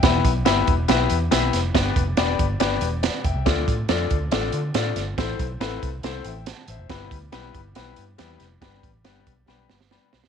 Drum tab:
HH |x-x-x-x-x-x-x-x-|x-x-x-x-x-x-x-x-|x-x-x-x-x-x-x-x-|x-x-x-x-x-x-x-x-|
SD |o---o---o---o-o-|o---o---o---o---|o---o---o---o-o-|o---o---o---o---|
BD |o-o---o---------|o-o---o-------o-|o-o---o---------|o-o---o---------|

HH |x-x-x-x-x-x-x-x-|x-x-x-x---------|
SD |o---o---o---o-o-|o---o---o-ooo-oo|
BD |o-o---o---------|o-o---o---------|